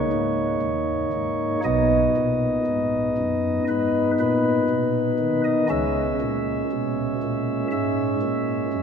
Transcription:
pipe organ
Already playing: A#3 D#4 C#5
0.13 G#2
0.62 D#2
1.13 G#2
1.64 B1 B2 B3 D#4 D#5
2.17 A#2
2.67 G#2
3.18 F#2
3.69 G#2 B4
4.20 A#2 B4
4.70 B2
5.19 D#3
5.44 D#5
5.70 C#2 C#3 G#3 C#4 E5
6.21 A#2
6.72 B2
7.23 A#2
7.72 G#2 E5
8.22 A#2
8.73 F#2

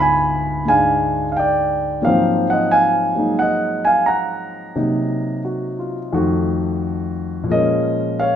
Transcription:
grand piano
Already playing: D2 G#2 B3 F4
0.00 G#5 B5
0.65 G#2 G#3 D4 G#5
0.70 F5
1.32 F5
1.37 D5 G5
2.02 G#2 F#3 A#3 C4 F5
2.06 F3 C5
2.50 D#5 F#5
2.71 F5 G#5
3.15 F#3 G#3 A#3 D#4
3.39 D#5 F#5
3.85 F5 G#5
4.06 F#5 A#5
4.76 C3 F#3 A#3 D#4
5.45 F#4
5.79 F4
6.13 F2 D#3 A3 F#4
7.44 A#2 F3
7.50 G#3 C#4 A#4 D#5
8.20 C#5 F5

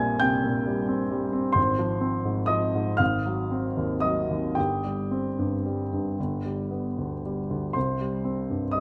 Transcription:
grand piano
Already playing: A#1 G3 C4 E5 G#5 E6 G#6
0.00 A#2
0.20 C3 G5 G6
0.44 A#2
0.66 G3
0.88 C4
1.11 G3
1.33 C4
1.52 G#1 C5 C6
1.79 F3
2.01 C4
2.25 G#2
2.46 F3 D#5 D#6
2.75 G#2
2.97 G#1 F5 F6
3.26 F#3
3.51 C4
3.77 D#2
4.00 F#3 D#5 D#6
4.30 D#2
4.55 G1 G4 G5
4.84 G3
5.11 C4
5.39 G2
5.66 G3
5.93 G2
6.20 G1
6.45 G3
6.71 B3
6.98 D2
7.25 G3
7.51 D2
7.73 C2 C5 C6
8.01 G3
8.25 C4
8.50 G2
8.71 G3 D#5 D#6

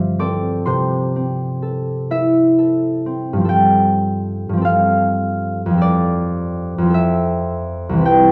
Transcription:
harp
Already playing: G2 F3 C4 C5 D5 E5 F5 D6 E6 F6
0.19 C4 A4 D5 D6
0.66 C3 C5 C6
1.16 C4
1.62 A4
2.11 E4 E5
2.58 A4
3.06 C4
3.33 G2 F3
3.41 C4
3.45 A4
3.49 G5
4.49 G2 F3
4.57 C4
4.61 A4 F5
5.66 F2
5.70 F3 C4
5.78 A4 D5
6.78 F2 F3
6.86 C4
6.90 A4
6.94 E5
7.89 C2 E3
7.97 C4 B4
8.05 G5

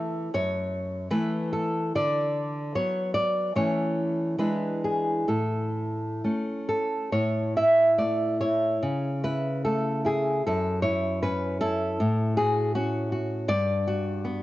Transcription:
nylon-string guitar
Already playing: E3 A3
0.34 F#2 C#5
1.10 E3 A3 B4
1.53 A4
1.95 D3 D5
2.75 F#3 B3 C#5
3.14 D5
3.56 E3 A3 C#4 C#5
4.39 E3 G#3 D4 B4
4.84 G#4
5.28 A2 A4
6.24 A3 C#4
6.69 A4
7.12 A2 C#5
7.56 E4 E5
7.98 A3 D5
8.41 E4 C#5
8.83 C#3
9.23 E4 B4
9.65 A3 A4
10.05 E4 G#4
10.47 F#2 A4
10.82 E4 C#5
11.22 C#4 B4
11.61 E4 A4
12.00 A2
12.37 F#4 G#4
12.75 C#4 F#4
13.12 F#4
13.48 G2 D5
13.88 F#4
14.25 B3

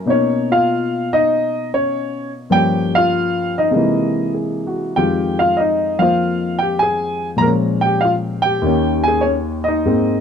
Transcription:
grand piano
0.06 B2 A#3 C#4 D#4
0.10 C#5
0.52 F4 F5
1.13 D#4 D#5
1.74 C#4 C#5
2.50 G2 F3 A#3 C#4 G5
2.54 G4
2.95 F4 F5
3.58 D#4 D#5
3.71 C3 G#3 A#3 D#4
3.76 E3
4.34 G#4
4.67 F#4
4.96 F2 D#3 G#3 F4 G4 G5
5.39 F4 F5
5.57 D#4 D#5
5.99 F3 A#3 F4 C5 F5
6.59 G4 G5
6.79 G#4 G#5
7.36 A#2 F3 A#5
7.42 G#3 A#4
7.47 C#4
7.81 G5
7.86 G4
8.01 F5
8.05 F4
8.42 G4 G5
8.62 D#2 D#3 A#3
8.66 C#4
9.04 G#5
9.08 G#4
9.21 C#5
9.26 C#4
9.64 D#5
9.68 D#4
9.85 G#2 G#3 A#3 C4

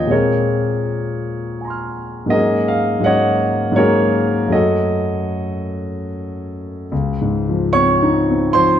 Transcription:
grand piano
Already playing: D#2 F3 A#3 C#4 F4 C#5 D#5 G5
0.06 A#2 G#3 A#3 C4
0.11 F4 G#4 A#4 C#5
1.61 G#5 A#5
1.67 C6 F6
2.26 G#2 F#3 A#3 C#4
2.30 F#4 G#4 A#4 D#5
2.68 F5
3.00 G#2 F#3 A#3 C#4 F#5
3.06 F#4 C#5 D#5
3.72 G#2 F#3 A#3
3.76 C#4 F#4 G#4 A#4 C#5
4.48 F#2 F#3 A3 C#4
4.52 F#4 A4 D#5
6.92 C#2
7.21 G#2
7.49 F3
7.73 C4 C#5 C#6
8.03 D#4
8.31 C4
8.53 F3 C5 C6

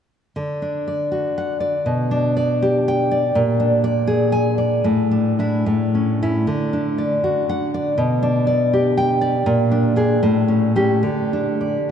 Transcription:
nylon-string guitar
0.36 D3
0.62 D4
0.88 D5
1.12 F#4
1.38 F#5
1.60 D5
1.86 B2
2.11 D4
2.37 D5
2.62 G4
2.88 G5
3.11 D5
3.35 A#2
3.60 D4
3.84 D5
4.07 G#4
4.32 G#5
4.58 D5
4.84 A2
5.11 D4
5.39 D4 E4
5.66 A2
5.95 C#4
6.22 C#4 E4
6.47 D3
6.73 D4
6.98 D5
7.24 F#4
7.49 F#5
7.74 D5
7.98 B2
8.23 D4
8.47 D5
8.73 G4
8.97 G5
9.21 D5
9.46 A#2
9.71 D4
9.96 D4 G#4
10.23 A2
10.48 C#4
10.76 C#4 G4
11.03 D3
11.33 D4
11.61 D5

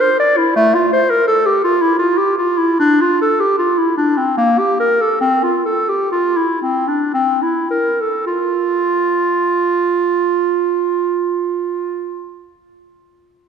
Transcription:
clarinet
0.01 C5
0.20 D5
0.37 E4
0.56 A3
0.74 F4
0.92 C5
1.10 A#4
1.28 A4
1.46 G4
1.64 F4
1.81 E4
1.99 F4
2.18 G4
2.38 F4
2.58 E4
2.80 D4
3.01 F4
3.22 A4
3.40 G4
3.58 F4
3.78 E4
3.98 D4
4.17 C4
4.37 A#3
4.59 G4
4.80 A#4
5.01 A4
5.21 C4
5.43 F4
5.66 A4
5.89 G4
6.12 F4
6.37 E4
6.62 C4
6.88 D4
7.14 C4
7.42 E4
7.71 A#4
8.01 A4
8.27 F4

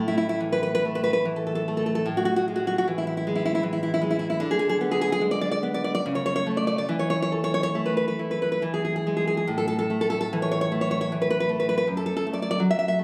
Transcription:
nylon-string guitar
Already playing: A2 A3
0.08 E4
0.18 E4
0.29 E4
0.40 E3
0.52 B4
0.63 B4
0.75 B4
0.85 A3
0.95 B4
1.04 B4
1.13 B4
1.25 E3
1.36 A4
1.47 A4
1.55 A4
1.68 A3
1.77 A4
1.86 A4
1.95 A4
2.06 A2
2.17 F#4
2.25 F#4
2.36 F#4
2.48 G#3
2.56 F#4
2.67 F#4
2.78 F#4
2.88 E3
2.98 E4
3.07 E4
3.17 E4
3.27 G#3
3.35 E4
3.45 E4
3.55 E4
3.63 E3
3.73 E4
3.83 E4
3.94 E4
4.01 G#3
4.11 E4
4.19 E4
4.30 E4
4.40 D3
4.51 G#4
4.59 G#4
4.69 G#4
4.81 B3
4.91 G#4
5.01 G#4
5.12 G#4
5.21 G#3
5.31 D5
5.41 D5
5.51 D5
5.63 B3
5.74 D5
5.84 D5
5.95 D5
6.06 C#3
6.15 C#5
6.26 C#5
6.36 C#5
6.47 A3
6.57 D5
6.67 D5
6.78 D5
6.89 E3
6.99 C#5
7.10 C#5
7.22 C#5
7.32 A4
7.44 C#5
7.54 C#5
7.63 C#5
7.75 A3
7.86 B4
7.97 B4
8.08 B4
8.19 E4
8.31 B4
8.42 B4
8.52 B4
8.62 E3
8.74 G#4
8.85 G#4
8.96 G#4
9.07 G#3
9.17 G#4
9.27 G#4
9.37 G#4
9.47 A2
9.58 A4
9.68 A4
9.79 A4
9.90 A3
10.01 A4
10.10 A4
10.21 A4
10.33 E3
10.42 C#5
10.51 C#5
10.61 C#5
10.72 A3
10.81 C#5
10.91 C#5
11.01 C#5
11.12 E3
11.22 B4
11.30 B4
11.40 B4
11.49 A3
11.60 B4
11.69 B4
11.78 B4
11.87 F#2
11.97 A4
12.06 A4
12.17 A4
12.27 A3
12.33 D5
12.42 D5
12.51 D5
12.60 F#3
12.71 E5
12.79 E5
12.88 E5
12.99 A3

